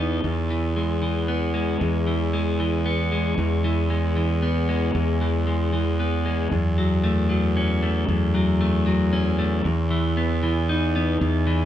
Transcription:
Already playing: E2 E3 D#4
0.00 B3
0.24 E2
0.50 E3
0.76 G#3
1.02 E3
1.28 B3
1.54 G#3
1.80 E2
2.07 E3
2.33 G#3
2.60 E3
2.86 B3
3.12 G#3
3.38 E2
3.64 E3
3.90 G#3
4.16 E3
4.42 B3
4.69 G#3
4.95 E2
5.21 E3
5.47 G#3
5.73 E3
6.00 B3
6.26 G#3
6.51 E2 F#2
6.78 F#3
7.04 A3
7.30 F#3
7.57 C#4
7.83 A3
8.08 E2 F#2
8.35 F#3
8.61 A3
8.86 F#3
9.13 C#4
9.39 A3
9.64 E2
9.90 E3
10.17 B3
10.43 E3
10.69 D#4
10.96 B3
11.21 E2
11.47 E3

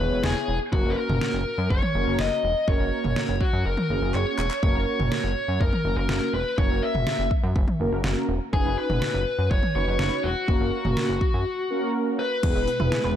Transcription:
Already playing: B4
0.00 E1 B3 E4 G#4 C#5
0.12 E1
0.24 E1 G#4, snare
0.48 E1
0.73 F#1 A#3 C#4 F#4 A#4, kick
0.85 F#1
0.90 B4
0.97 A#4
1.09 F#1, mid tom
1.21 snare
1.34 F#1
1.58 F#2
1.70 F#1 C#5, kick
1.82 mid tom
1.95 F#1 A#3 C#4 F#4 A#4
2.07 F#1
2.19 F#1 D#5, snare
2.43 E1
2.68 F#1 A#3 C#4 F#4 A#4 C#5, kick
2.80 F#1
3.04 F#1, mid tom
3.16 snare
3.29 F#1
3.41 F#4, kick
3.53 F#2
3.65 F#1 A#4
3.77 mid tom
3.90 F#1 A#3 C#4 F#4 G#4
4.02 F#1
4.14 F#1 C#5, clap
4.38 E1, clap
4.51 clap
4.63 F#1 A#3 C#4 F#4 A#4 C#5, kick
4.75 F#1
4.99 F#1, mid tom
5.12 C#5, snare
5.24 F#1
5.48 F#2
5.61 F#1 A#4, kick
5.73 mid tom
5.85 F#1 A#3 C#4 F#4 A#4
5.97 F#1 A#4
6.09 F#1, snare
6.34 E1 B4
6.58 F#1 A#3 C#4 F#4 A#4 C#5, kick
6.70 F#1
6.83 E5
6.94 F#1, mid tom
7.07 snare
7.19 F#1
7.31 kick
7.43 F#2
7.56 F#1, kick
7.68 mid tom
7.80 F#1 A#3 C#4 F#4 A#4
7.92 F#1
8.04 F#1, snare
8.29 E1
8.53 F#1 C#4 D#4 F#4 G#4 B4, kick
8.65 F#1
8.78 B4
8.90 F#1, mid tom
9.02 snare
9.14 F#1
9.39 F#2
9.51 F#1 C#5, kick
9.63 mid tom
9.75 F#1 C#4 D#4 F#4 B4 C#5
9.87 F#1
9.99 F#1, snare
10.24 E1 F#4
10.48 F#1 A#3 C#4 F#4 A#4, kick
10.61 F#1
10.85 F#1, mid tom
10.97 snare
11.09 F#1
11.21 kick
11.34 F#2
11.70 A#3 C#4 F#4 A#4
12.19 B4
12.43 E1 B2 E3 G#3 B3 E4 G#4 B4, kick, closed hi-hat, crash
12.55 E1 G#3
12.68 B3, closed hi-hat
12.80 E1 B3 E4 G#4 B4, mid tom
12.92 G#4, snare, closed hi-hat
13.04 E1 B4

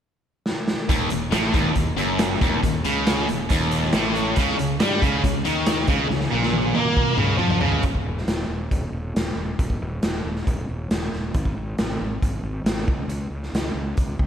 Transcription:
0.46 snare
0.68 snare
0.89 D#1 D#2, kick, closed hi-hat
1.10 D#1 D#2, closed hi-hat
1.31 A1 A2, snare, closed hi-hat
1.53 D#1 D#2, kick, closed hi-hat
1.73 D#1 D#2, kick, closed hi-hat
1.96 F#1 F#2, closed hi-hat
2.19 snare, closed hi-hat
2.41 D#1 D#2, kick, closed hi-hat
2.62 D#1 D#2, kick, closed hi-hat
2.85 C#2 C#3, closed hi-hat
3.07 snare, closed hi-hat
3.28 D#1 D#2, closed hi-hat
3.50 D#1 D#2, kick, closed hi-hat
3.71 closed hi-hat
3.83 snare
3.93 A1 A2, snare, closed hi-hat
4.15 closed hi-hat
4.36 C#2 C#3, kick, closed hi-hat
4.48 snare
4.58 C#2 C#3, closed hi-hat
4.80 G2 G3, snare, closed hi-hat
5.02 C#2 C#3, kick, closed hi-hat
5.23 C#2 C#3, kick, closed hi-hat
5.45 D#2 D#3, closed hi-hat
5.66 snare, closed hi-hat
5.87 C#2 C#3, kick, closed hi-hat
6.09 C#2 C#3, snare
6.20 snare
6.31 A#1 A#2
6.42 snare
6.53 high tom
6.74 A#2 A#3, high tom
6.85 mid tom
6.97 kick
7.08 mid tom
7.17 C#2 C#3, mid tom
7.38 F2 F3, mid tom
7.50 floor tom
7.60 C#2 C#3, floor tom
7.72 floor tom
7.83 D#1, kick, closed hi-hat
7.95 kick
8.05 D#1
8.18 snare
8.27 D#1, snare, closed hi-hat
8.48 D#1
8.71 D#1, kick, closed hi-hat
8.92 D#1
9.16 D#1, snare, closed hi-hat
9.36 D#1
9.59 D#1, kick, closed hi-hat
9.70 kick
9.81 D#1
10.03 D#1, snare, closed hi-hat
10.24 D#1
10.36 snare
10.47 D#1, kick, closed hi-hat
10.69 D#1
10.91 D#1, snare, closed hi-hat
11.13 D#1, snare
11.34 G#1, kick, closed hi-hat
11.45 kick
11.57 G#1
11.78 G#1, snare, closed hi-hat
12.01 G#1
12.22 G#1, kick, closed hi-hat
12.43 G#1
12.64 G#1, snare, closed hi-hat
12.88 C#2, kick
13.08 C#2, closed hi-hat
13.30 C#2
13.43 snare
13.53 C#2, snare, closed hi-hat
13.74 C#2
13.97 C#2, kick, closed hi-hat
14.19 C#2, kick

